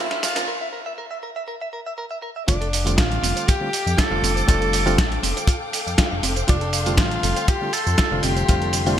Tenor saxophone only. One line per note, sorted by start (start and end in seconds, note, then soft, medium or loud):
0.00 0.22 E4 loud
0.23 0.46 F4 loud
2.47 2.99 D4 medium
2.98 3.49 F4 loud
3.48 4.00 G4 loud
3.98 4.48 A4 loud
4.49 5.19 A4 loud
6.49 7.00 D4 loud
6.99 7.50 F4 loud
7.48 7.75 G4 loud
7.73 7.97 A4 loud
7.98 8.16 A4 loud
8.16 8.25 A4 medium
8.23 8.99 G4 loud